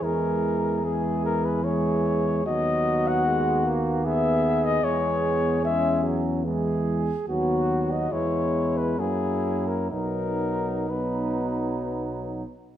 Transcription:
<<
  \new Staff \with { instrumentName = "Cornet" } { \time 3/4 \key b \major \tempo 4 = 73 ais'4 gis'8 ais'16 b'16 cis''4 | dis''8. fis''4 r16 e''8. dis''16 | cis''4 e''8 r4. | fis'8. dis''16 cis''8. b'16 gis'8. ais'16 |
ais'4 b'4. r8 | }
  \new Staff \with { instrumentName = "Flugelhorn" } { \time 3/4 \key b \major gis'4 gis'4 gis'4 | fis'2 gis'4~ | gis'2 gis'4 | fis'4 e'4 e'4 |
dis'4 dis'4. r8 | }
  \new Staff \with { instrumentName = "Trombone section" } { \time 3/4 \key b \major gis4 gis4 gis4 | b2 b4~ | b4 cis'4 gis4 | b4 b4 ais4 |
b4 b4. r8 | }
  \new Staff \with { instrumentName = "Trombone" } { \clef bass \time 3/4 \key b \major e4 e4 e4 | fis4 gis8 ais8 b4 | gis4 gis8 fis8 e4 | fis4 gis4 fis4 |
fis4 fis4. r8 | }
  \new Staff \with { instrumentName = "Tuba" } { \clef bass \time 3/4 \key b \major e,2. | dis,2. | e,2. | dis,4 e,4 fis,4 |
b,,2~ b,,8 r8 | }
>>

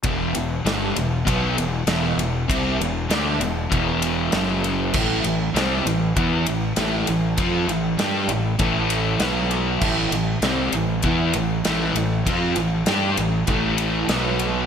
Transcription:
<<
  \new Staff \with { instrumentName = "Distorted electric guitar" } { \clef bass \time 4/4 \key e \minor \tempo 4 = 98 <e, b, e>8 <e, b,>8 <g, d g>8 <e, b,>8 <b, fis b>8 <e, b,>8 <e, b, e>8 <e, b,>8 | <c g c'>8 <e, b,>8 <d a d'>8 <e, b,>8 <e, b, e>4 <fis, cis fis>4 | <a, e a>8 <a, e>8 <c g c'>8 <a, e>8 <e b e'>8 <a, e>8 <a, e a>8 <a, e>8 | <f c' f'>8 <a, e>8 <g d' g'>8 <a, e>8 <a, e a>4 <b, fis b>4 |
<a, e a>8 <a, e>8 <c g c'>8 <a, e>8 <e b e'>8 <a, e>8 <a, e a>8 <a, e>8 | <f c' f'>8 <a, e>8 <g d' g'>8 <a, e>8 <a, e a>4 <b, fis b>4 | }
  \new Staff \with { instrumentName = "Overdriven electric guitar" } { \clef bass \time 4/4 \key e \minor <e, b, e>8 <e, b,>8 <g, d g>8 <e, b,>8 <b, fis b>8 <e, b,>8 <e, b, e>8 <e, b,>8 | <c g c'>8 <e, b,>8 <d a d'>8 <e, b,>8 <e, b, e>4 <fis, cis fis>4 | <a, e a>8 <a, e>8 <c g c'>8 <a, e>8 <e b e'>8 <a, e>8 <a, e a>8 <a, e>8 | <f c' f'>8 <a, e>8 <g d' g'>8 <a, e>8 <a, e a>4 <b, fis b>4 |
<a, e a>8 <a, e>8 <c g c'>8 <a, e>8 <e b e'>8 <a, e>8 <a, e a>8 <a, e>8 | <f c' f'>8 <a, e>8 <g d' g'>8 <a, e>8 <a, e a>4 <b, fis b>4 | }
  \new Staff \with { instrumentName = "Fingered electric bass" } { \clef bass \time 4/4 \key e \minor e,,8 e,,8 g,,8 e,,8 b,,8 e,,8 e,,8 e,,8 | c,8 e,,8 d,8 e,,8 e,,4 fis,,4 | a,,8 a,,8 c,8 a,,8 e,8 a,,8 a,,8 a,,8 | f,8 a,,8 g,8 a,,8 a,,4 b,,4 |
a,,8 a,,8 c,8 a,,8 e,8 a,,8 a,,8 a,,8 | f,8 a,,8 g,8 a,,8 a,,4 b,,4 | }
  \new DrumStaff \with { instrumentName = "Drums" } \drummode { \time 4/4 <bd cymr>8 cymr8 <cymr sn>8 cymr8 <bd cymr>8 cymr8 <cymr sn>8 cymr8 | <bd cymr>8 cymr8 <cymr sn>8 cymr8 <bd cymr>8 cymr8 <cymr sn>8 cymr8 | <cymc bd>8 cymr8 <cymr sn>8 cymr8 <bd cymr>8 cymr8 <cymr sn>8 cymr8 | <bd cymr>8 cymr8 <cymr sn>8 cymr8 <bd cymr>8 cymr8 <cymr sn>8 cymr8 |
<cymc bd>8 cymr8 <cymr sn>8 cymr8 <bd cymr>8 cymr8 <cymr sn>8 cymr8 | <bd cymr>8 cymr8 <cymr sn>8 cymr8 <bd cymr>8 cymr8 <cymr sn>8 cymr8 | }
>>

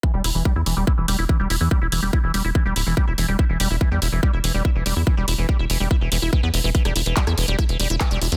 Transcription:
<<
  \new Staff \with { instrumentName = "Acid bass" } { \clef bass \time 4/4 \key e \minor \tempo 4 = 143 e16 g16 e'16 e16 g16 e'16 e16 g16 e'16 e16 g16 e'16 e16 g16 e'16 e16 | g16 e'16 e16 g16 e'16 e16 g16 e'16 e16 g16 e'16 e16 g16 e'16 e16 g16 | e'16 e16 g16 e'16 e16 g16 e'16 e16 g16 e'16 e16 g16 e'16 e16 g16 e'16 | e16 g16 e'16 e16 g16 e'16 e16 g16 e'16 e16 e16 e'16 e16 b16 e16 e16 |
e16 g16 e'16 e16 g16 e'16 e16 g16 e'16 e16 g16 e'16 e16 g16 e'16 e16 | }
  \new Staff \with { instrumentName = "Analog synth bass" } { \clef bass \time 4/4 \key e \minor r16 e,,16 e,,16 e,,16 r16 e,16 e,,16 e,,16 r16 e,,16 e,,16 e,,16 r16 e,,16 e,,16 e,16 | r16 e,,16 e,,16 e,,16 r16 e,,16 e,,16 e,,16 r16 e,,16 d,,16 e,,16 r16 e,,16 e,,16 e,,16 | r16 e,,16 e,,16 e,,16 r16 e,16 e,,16 e,,16 r16 e,,16 e,,16 e,,16 r16 e,,16 e,,16 e,16 | r16 e,,16 e,,16 e,,16 r16 e,,16 e,,16 e,,16 r16 e,,16 e,,16 e,,16 r16 e,16 e,,16 e,,16 |
r16 e,,16 e,,16 e,,16 r16 e,16 e,,16 e,,16 r16 e,,16 e,,16 e,,16 r16 e,,16 e,,16 e,16 | }
  \new DrumStaff \with { instrumentName = "Drums" } \drummode { \time 4/4 bd8 hho8 bd8 hho8 bd8 hho8 bd8 hho8 | bd8 hho8 bd8 hho8 bd8 hho8 bd8 hho8 | bd8 hho8 bd8 hho8 bd8 hho8 bd8 hho8 | bd8 hho8 bd8 hho8 bd8 hho8 bd8 hho8 |
<hh bd>16 <hh ss>16 hho16 hh16 <hc hh bd>16 <hh ss>16 hho16 hh16 <hh bd ss>16 hh16 hho16 hh16 <hc hh bd ss>16 hh16 hho16 hh16 | }
>>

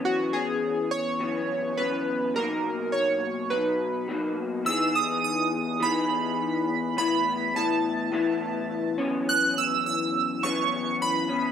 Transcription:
<<
  \new Staff \with { instrumentName = "Synth keys" } { \time 4/4 \key fis \mixolydian \tempo 4 = 104 fis'8 gis'4 cis''4. b'4 | ais'4 cis''4 b'4. r8 | e'''8 dis'''8 dis'''4 b''2 | b''4 a''2~ a''8 r8 |
fis'''8 e'''8 e'''4 cis'''4 b''4 | }
  \new Staff \with { instrumentName = "Clean electric guitar" } { \time 4/4 \key fis \mixolydian <fis, e b cis'>8 <e b cis'>4. <fis, e b cis'>4 <fis, e b cis'>4 | <b, fis ais dis'>2 <b, fis dis'>4 <b, fis ais dis'>4 | <e b dis' gis'>2 <e b dis' gis'>2 | <a, e b e'>4 <a, e b e'>4 <a, e b e'>4. <fis, e b cis'>8~ |
<fis, e b cis'>2 <fis, e b cis'>4. <e b cis'>8 | }
>>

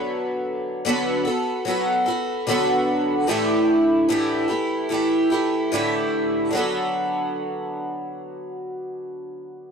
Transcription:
\new Staff \with { instrumentName = "Twelve-string acoustic guitar" } { \time 4/4 \key d \major \tempo 4 = 74 <d fis b fis' a'>4 <d fis b fis' a'>8 <b fis' a'>8 <fis b fis' a'>8 <b fis' a'>8 <d fis b fis' a'>4 | <a, d e a e' g'>4 <a, d e a e' g'>8 <e a e' g'>8 <e a e' g'>8 <e a e' g'>8 <a, d e a e' g'>4 | <d fis b fis' a'>1 | }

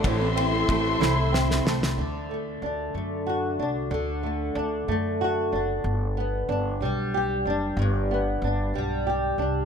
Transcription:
<<
  \new Staff \with { instrumentName = "String section" } { \time 6/8 \key d \mixolydian \tempo 4. = 62 <a' e'' c'''>2. | r2. | r2. | r2. |
r2. | }
  \new Staff \with { instrumentName = "Nylon-string guitar" } { \time 6/8 \key d \mixolydian a,8 c'8 a8 e'8 c'8 a8 | d8 a8 d'8 a8 fis'8 d'8 | d8 a8 d'8 a8 fis'8 d'8 | r8 b8 d'8 g8 g'8 d'8 |
g,8 b8 d'8 g8 g'8 d'8 | }
  \new Staff \with { instrumentName = "Steel-string acoustic guitar" } { \time 6/8 \key d \mixolydian <a, e a c' e'>16 <a c' e'>8 <a c' e'>16 <e a c' e'>8 <a, e a c' e'>16 <a c' e'>8 <a c' e'>16 <e a c' e'>8 | r2. | r2. | r2. |
r2. | }
  \new Staff \with { instrumentName = "Upright bass" } { \clef bass \time 6/8 \key d \mixolydian a,,4 a,,8 c,4 c,8 | d,4 d,8 fis,4 c,8 | d,4 d,8 fis,4 fis,,8 | g,,4 g,,8 b,,4 fis,,8 |
g,,4 g,,8 b,,4 c,8 | }
  \new DrumStaff \with { instrumentName = "Drums" } \drummode { \time 6/8 <bd cymr>8 cymr8 <bd cymr>8 sn8 sn16 sn16 sn16 sn16 | r4. r4. | r4. r4. | r4. r4. |
r4. r4. | }
>>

